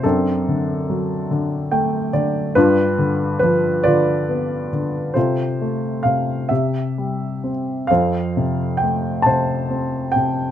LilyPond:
<<
  \new Staff \with { instrumentName = "Grand piano" } { \time 6/8 \key f \major \tempo 4. = 46 << { a'2~ a'8 r8 | b'4 b'8 d''4 r8 | c''4 f''8 e''4 r8 | f''4 g''8 a''4 g''8 | } \\ { <c' d'>2~ <c' d'>8 r8 | <d' f'>4. <f' b'>4. | <f' a'>4. g'4. | <a' c''>4. c''4. | } >> }
  \new Staff \with { instrumentName = "Grand piano" } { \clef bass \time 6/8 \key f \major fis,8 d8 fis8 d8 <a g''>8 <d d''>8 | g,8 d8 f8 d8 b8 d8 | c8 a8 c8 c8 g8 c'8 | f,8 c8 a8 c8 c'8 c8 | }
>>